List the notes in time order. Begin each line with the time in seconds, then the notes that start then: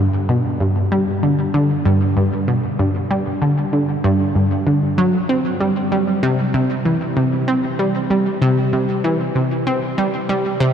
0.29 B2
0.60 G2
0.92 G3
1.23 D3
1.54 D3
1.85 G2
2.17 G2
2.48 B2
2.79 G2
3.11 G3
3.42 D3
3.73 D3
4.04 G2
4.35 G2
4.67 D3
4.98 F#3
5.29 C4
5.60 G3
5.92 G3
6.23 C3
6.54 C3
6.85 E3
7.17 C3
7.48 C4
7.79 G3
8.10 G3
8.42 C3
8.73 C3
9.04 E3
9.35 C3
9.67 C4
9.98 G3
10.29 G3
10.60 C3